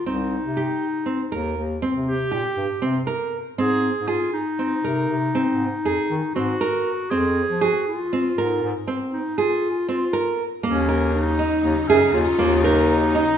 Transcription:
0.05 0.38 C2 medium
0.05 0.35 C4 medium
0.05 1.76 D#4 medium
0.44 0.65 C3 medium
0.57 0.86 G4 medium
1.06 1.21 C4 medium
1.32 1.53 D#2 medium
1.32 1.61 A#4 medium
1.56 1.78 D#2 medium
1.82 2.11 C4 medium
1.95 2.26 C3 medium
2.07 3.29 G4 loud
2.31 2.43 A#2 medium
2.31 2.61 G4 medium
2.57 2.68 G2 medium
2.81 3.03 C3 medium
2.81 2.97 C4 medium
3.07 3.36 A#4 medium
3.57 3.90 G#2 medium
3.57 3.88 C4 medium
3.57 4.09 G#4 loud
3.96 4.17 G#2 medium
4.07 4.33 F4 medium
4.07 4.37 G#4 medium
4.33 6.32 D#4 medium
4.59 4.74 C4 medium
4.83 5.05 C3 medium
4.83 5.14 A#4 medium
5.09 5.30 C3 medium
5.35 5.64 C4 medium
5.47 5.79 G#2 medium
5.85 5.96 F2 medium
5.85 6.15 G#4 medium
6.10 6.21 D#3 medium
6.35 6.56 G#2 medium
6.35 6.50 C4 medium
6.35 7.12 F#4 medium
6.61 6.90 A#4 medium
7.10 7.43 F2 medium
7.10 7.41 C4 medium
7.10 7.63 G#4 medium
7.49 7.70 F3 medium
7.61 7.87 F#4 medium
7.61 7.91 G#4 medium
7.88 8.82 F4 medium
8.13 8.27 C4 medium
8.37 8.59 G#2 medium
8.37 8.67 A#4 medium
8.63 8.73 G#2 medium
8.87 9.17 C4 medium
9.13 9.40 D#4 medium
9.38 9.89 F4 medium
9.38 9.67 G#4 medium
9.88 10.03 C4 medium
9.88 10.36 F4 medium
10.13 10.42 A#4 medium
10.63 11.49 D#2 loud
10.63 13.38 C#3 medium
10.63 13.38 F#3 medium
10.63 10.78 A#3 medium
10.63 11.11 C#4 medium
10.63 13.38 D#4 medium
10.89 11.18 A#4 medium
11.14 11.90 D#4 medium
11.39 11.68 D#4 medium
11.64 11.75 D#2 medium
11.88 12.00 F#2 medium
11.88 12.15 C#4 medium
11.88 12.19 G#4 medium
12.14 12.25 D#2 medium
12.14 12.66 F4 loud
12.39 13.23 D#2 loud
12.39 12.53 A#3 medium
12.64 13.38 D#4 loud
12.64 12.93 A#4 medium
13.15 13.38 D#4 medium

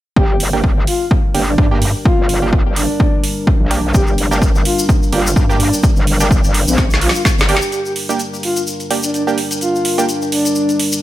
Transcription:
0.16 0.38 G1 medium
0.16 7.68 G3 medium
0.16 7.68 D4 medium
0.16 0.25 G4 medium
0.16 7.68 A#4 medium
0.16 kick loud
0.30 0.36 G4 medium
0.40 0.86 G1 medium
0.40 open hi-hat medium
0.53 0.65 A#3 medium
0.53 0.65 D4 medium
0.53 0.65 G4 medium
0.64 kick medium
0.87 1.05 F4 medium
0.87 open hi-hat loud
1.11 kick loud
1.34 1.57 G1 medium
1.34 1.43 A#3 medium
1.34 1.43 D4 medium
1.34 1.43 G4 medium
1.34 open hi-hat loud
1.48 1.55 D4 medium
1.58 1.93 G2 loud
1.58 1.67 D4 medium
1.58 kick loud
1.71 1.83 A#3 medium
1.71 1.83 D4 medium
1.71 1.83 G4 medium
1.82 open hi-hat loud
2.05 2.53 F4 medium
2.05 kick loud
2.19 2.64 G1 loud
2.29 open hi-hat loud
2.42 2.49 A#3 medium
2.42 2.49 D4 medium
2.42 2.49 G4 medium
2.53 kick medium
2.66 2.88 G1 medium
2.76 3.23 D4 medium
2.76 open hi-hat loud
3.00 kick loud
3.24 open hi-hat loud
3.47 kick loud
3.61 3.82 A#1 medium
3.71 3.80 A#3 medium
3.71 3.80 D4 medium
3.71 3.80 G4 medium
3.71 open hi-hat loud
3.84 3.93 A#1 loud
3.94 4.16 G1 medium
3.94 4.03 G4 medium
3.94 kick loud
3.94 shaker medium
4.07 4.14 G4 medium
4.07 shaker soft
4.18 4.64 G1 medium
4.18 open hi-hat loud
4.31 4.43 A#3 medium
4.31 4.43 D4 medium
4.31 4.43 G4 medium
4.31 shaker medium
4.42 kick loud
4.42 shaker medium
4.55 shaker soft
4.65 4.83 F4 medium
4.65 open hi-hat loud
4.79 shaker medium
4.89 kick loud
4.89 shaker medium
5.03 shaker soft
5.13 5.35 G1 medium
5.13 5.21 A#3 medium
5.13 5.21 D4 medium
5.13 5.21 F4 medium
5.13 5.21 G4 medium
5.13 open hi-hat loud
5.26 5.32 F4 medium
5.26 shaker medium
5.36 5.71 G2 medium
5.36 kick loud
5.36 shaker medium
5.49 5.61 A#3 medium
5.49 5.61 D4 medium
5.49 5.61 G4 medium
5.49 shaker soft
5.60 5.78 D4 medium
5.60 open hi-hat loud
5.73 shaker medium
5.83 kick loud
5.83 shaker medium
5.96 6.42 G1 loud
5.96 shaker soft
6.07 open hi-hat loud
6.20 6.27 A#3 medium
6.20 6.27 D4 medium
6.20 6.27 G4 medium
6.20 shaker medium
6.31 kick loud
6.31 shaker medium
6.44 6.65 G1 medium
6.44 shaker soft
6.54 open hi-hat loud
6.67 7.13 A#1 loud
6.67 6.84 C4 medium
6.67 shaker medium
6.78 kick loud
6.78 snare medium
6.78 shaker medium
6.90 snare medium
6.90 shaker soft
7.01 7.10 F4 medium
7.01 open hi-hat loud
7.09 snare medium
7.15 7.22 F4 medium
7.15 shaker medium
7.25 kick loud
7.25 snare medium
7.25 shaker medium
7.38 7.60 G1 medium
7.38 snare medium
7.38 shaker soft
7.49 7.58 A#3 medium
7.49 7.58 D4 medium
7.49 7.58 G4 medium
7.49 7.72 G4 medium
7.49 open hi-hat loud
7.57 snare loud
7.62 shaker medium
7.72 11.02 G3 medium
7.72 11.02 D4 medium
7.72 7.81 G4 medium
7.72 11.02 A#4 medium
7.72 closed hi-hat medium
7.72 shaker medium
7.85 7.92 G4 medium
7.85 shaker soft
7.96 open hi-hat loud
8.09 8.21 A#3 medium
8.09 8.21 D4 medium
8.09 8.21 G4 loud
8.09 closed hi-hat medium
8.09 shaker medium
8.19 closed hi-hat medium
8.19 shaker medium
8.34 shaker soft
8.43 8.62 F4 medium
8.43 open hi-hat loud
8.56 closed hi-hat medium
8.56 shaker medium
8.67 shaker medium
8.80 closed hi-hat soft
8.80 shaker soft
8.90 8.99 A#3 medium
8.90 8.99 D4 medium
8.90 8.99 G4 medium
8.90 open hi-hat loud
9.03 9.10 D4 medium
9.03 closed hi-hat medium
9.03 shaker medium
9.14 9.23 D4 medium
9.14 closed hi-hat medium
9.14 shaker medium
9.27 9.39 A#3 medium
9.27 9.39 D4 medium
9.27 9.39 G4 medium
9.27 shaker soft
9.38 open hi-hat loud
9.51 closed hi-hat medium
9.51 shaker medium
9.61 10.09 F4 medium
9.61 closed hi-hat medium
9.61 shaker medium
9.75 shaker soft
9.85 open hi-hat loud
9.98 10.05 A#3 medium
9.98 10.05 D4 medium
9.98 10.05 G4 medium
9.98 closed hi-hat medium
9.98 shaker medium
10.09 closed hi-hat medium
10.09 shaker medium
10.22 shaker soft
10.32 10.80 D4 medium
10.32 open hi-hat loud
10.45 closed hi-hat soft
10.45 shaker medium
10.55 shaker medium
10.69 closed hi-hat soft
10.69 shaker soft
10.79 open hi-hat loud
10.92 closed hi-hat medium
10.92 shaker medium

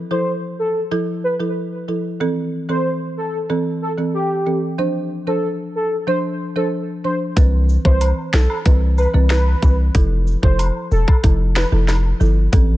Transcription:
0.11 0.27 F3 medium
0.11 0.27 E4 medium
0.11 0.27 A4 medium
0.11 0.32 C5 medium
0.59 0.80 A4 medium
0.91 1.07 F3 loud
0.91 1.07 E4 medium
0.91 1.07 A4 loud
1.24 1.34 B4 medium
1.40 1.84 F3 medium
1.40 1.84 E4 medium
1.40 1.85 A4 medium
1.88 2.18 F3 medium
1.88 2.18 E4 medium
1.88 2.18 A4 medium
2.20 2.36 E3 loud
2.20 2.36 C4 medium
2.20 2.36 A4 loud
2.69 2.85 E3 medium
2.69 2.85 C4 medium
2.69 2.85 A4 medium
2.69 2.90 C5 medium
3.17 3.38 A4 medium
3.49 3.65 E3 medium
3.49 3.65 C4 medium
3.49 3.66 A4 loud
3.82 3.92 A4 medium
3.98 4.14 E3 medium
3.98 4.14 C4 medium
3.98 4.14 A4 medium
4.14 4.60 G4 loud
4.46 4.62 E3 medium
4.46 4.62 C4 medium
4.46 4.62 A4 medium
4.78 4.94 F3 loud
4.78 4.94 D4 medium
4.78 4.95 C5 loud
5.27 5.43 F3 medium
5.27 5.43 D4 medium
5.27 5.48 A4 medium
5.27 5.43 C5 medium
5.75 5.96 A4 medium
6.07 6.23 F3 loud
6.07 6.23 D4 medium
6.07 6.18 C5 loud
6.07 6.23 C5 loud
6.56 7.00 F3 medium
6.56 7.01 D4 medium
6.56 6.67 A4 medium
6.56 7.01 C5 medium
7.04 7.34 F3 medium
7.04 7.34 D4 medium
7.04 7.15 C5 medium
7.04 7.34 C5 medium
7.36 7.78 C2 loud
7.36 7.52 E3 medium
7.36 7.52 C4 medium
7.36 7.53 B4 loud
7.36 kick loud
7.36 closed hi-hat medium
7.69 cabasa medium
7.85 8.12 C2 medium
7.85 8.01 E3 medium
7.85 8.01 C4 medium
7.85 8.01 B4 medium
7.85 8.06 C5 medium
7.85 kick medium
8.01 closed hi-hat medium
8.01 high woodblock medium
8.33 8.47 B1 loud
8.33 8.55 A4 medium
8.33 finger snap loud
8.33 snare loud
8.33 cabasa medium
8.50 high woodblock medium
8.65 9.07 C2 medium
8.65 8.81 E3 medium
8.65 8.81 C4 medium
8.65 8.82 B4 loud
8.65 kick loud
8.65 closed hi-hat medium
8.98 9.08 B4 medium
8.98 cabasa medium
8.98 high woodblock medium
9.14 9.55 C2 medium
9.14 9.58 E3 medium
9.14 9.59 C4 medium
9.14 9.59 B4 medium
9.30 9.76 B4 medium
9.30 finger snap medium
9.30 snare loud
9.30 closed hi-hat medium
9.30 high woodblock medium
9.62 9.90 C2 medium
9.62 9.92 E3 medium
9.62 9.92 C4 medium
9.62 9.92 B4 medium
9.62 kick loud
9.62 cabasa medium
9.95 10.36 F1 loud
9.95 10.10 F3 medium
9.95 10.11 E4 medium
9.95 10.11 A4 loud
9.95 kick loud
9.95 closed hi-hat medium
10.27 cabasa medium
10.43 10.70 F1 loud
10.43 10.59 F3 medium
10.43 10.59 E4 medium
10.43 10.59 A4 medium
10.43 10.64 C5 medium
10.43 kick medium
10.59 closed hi-hat medium
10.59 high woodblock medium
10.91 11.05 E1 medium
10.91 11.13 A4 medium
10.91 cabasa medium
11.08 kick loud
11.08 high woodblock medium
11.24 11.65 F1 loud
11.24 11.39 F3 loud
11.24 11.40 E4 medium
11.24 11.40 A4 loud
11.24 kick loud
11.24 closed hi-hat medium
11.56 11.67 B4 medium
11.56 finger snap loud
11.56 snare loud
11.56 cabasa medium
11.56 high woodblock medium
11.72 12.13 F1 loud
11.72 12.17 F3 medium
11.72 12.17 E4 medium
11.72 12.17 A4 medium
11.88 snare medium
11.88 closed hi-hat medium
11.88 high woodblock medium
12.20 12.48 G1 medium
12.20 12.50 F3 medium
12.20 12.50 E4 medium
12.20 12.50 A4 medium
12.20 cabasa medium
12.52 12.77 A1 loud
12.52 12.68 E3 loud
12.52 12.69 C4 medium
12.52 12.69 A4 loud
12.52 kick loud
12.52 closed hi-hat medium

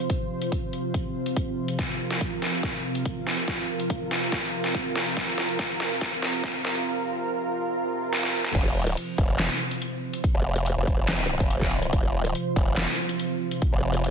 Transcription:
0.00 8.51 C3 medium
0.00 8.51 F3 medium
0.00 8.51 F4 medium
0.00 1.75 C5 medium
0.10 kick loud
0.10 closed hi-hat medium
0.42 closed hi-hat medium
0.52 kick loud
0.52 closed hi-hat medium
0.73 closed hi-hat soft
0.94 kick loud
0.94 closed hi-hat medium
1.26 closed hi-hat soft
1.37 kick loud
1.37 closed hi-hat medium
1.68 closed hi-hat soft
1.79 8.51 A#4 medium
1.79 kick loud
1.79 snare soft
1.79 closed hi-hat medium
2.11 snare soft
2.11 closed hi-hat medium
2.21 kick loud
2.21 closed hi-hat medium
2.42 snare medium
2.42 closed hi-hat soft
2.63 kick loud
2.63 snare medium
2.63 closed hi-hat medium
2.95 closed hi-hat medium
3.05 kick loud
3.05 closed hi-hat medium
3.27 snare medium
3.37 closed hi-hat medium
3.48 kick loud
3.48 snare medium
3.48 closed hi-hat medium
3.80 closed hi-hat medium
3.90 kick loud
3.90 closed hi-hat medium
4.11 snare medium
4.11 closed hi-hat medium
4.32 kick loud
4.32 snare medium
4.32 closed hi-hat medium
4.64 snare medium
4.64 closed hi-hat medium
4.74 kick loud
4.74 closed hi-hat medium
4.96 snare medium
5.06 closed hi-hat medium
5.17 kick loud
5.17 snare medium
5.17 closed hi-hat medium
5.38 snare medium
5.49 closed hi-hat medium
5.59 kick loud
5.59 snare medium
5.59 closed hi-hat medium
5.80 snare medium
5.80 closed hi-hat medium
6.01 kick loud
6.01 snare medium
6.01 closed hi-hat medium
6.22 snare medium
6.33 closed hi-hat medium
6.44 kick loud
6.44 snare medium
6.44 closed hi-hat medium
6.65 snare medium
6.75 closed hi-hat medium
8.13 snare medium
8.23 snare medium
8.44 snare medium
8.55 8.95 F1 loud
8.55 14.11 C3 medium
8.55 14.11 F3 medium
8.55 14.11 F4 medium
8.55 14.11 C5 medium
8.55 kick loud
8.55 closed hi-hat medium
8.55 crash loud
8.87 closed hi-hat medium
8.97 closed hi-hat medium
9.18 9.48 F1 loud
9.18 kick loud
9.18 closed hi-hat medium
9.39 snare loud
9.39 clap medium
9.39 closed hi-hat medium
9.71 closed hi-hat medium
9.82 closed hi-hat medium
10.13 closed hi-hat medium
10.24 kick loud
10.24 closed hi-hat medium
10.35 10.75 F1 loud
10.56 closed hi-hat medium
10.66 closed hi-hat medium
10.77 11.38 F1 loud
10.87 kick loud
10.87 closed hi-hat medium
11.08 snare loud
11.08 clap loud
11.08 closed hi-hat medium
11.40 11.91 F1 medium
11.40 kick loud
11.40 closed hi-hat medium
11.51 closed hi-hat medium
11.61 kick medium
11.61 snare soft
11.82 closed hi-hat medium
11.93 12.33 F1 loud
11.93 kick loud
11.93 closed hi-hat medium
12.25 closed hi-hat medium
12.35 closed hi-hat medium
12.56 12.86 F1 loud
12.56 kick loud
12.56 closed hi-hat medium
12.77 snare loud
12.77 clap medium
12.77 closed hi-hat medium
13.09 closed hi-hat medium
13.20 closed hi-hat medium
13.51 closed hi-hat medium
13.62 kick loud
13.62 closed hi-hat medium
13.73 14.11 F1 loud
13.94 closed hi-hat medium
14.04 closed hi-hat medium

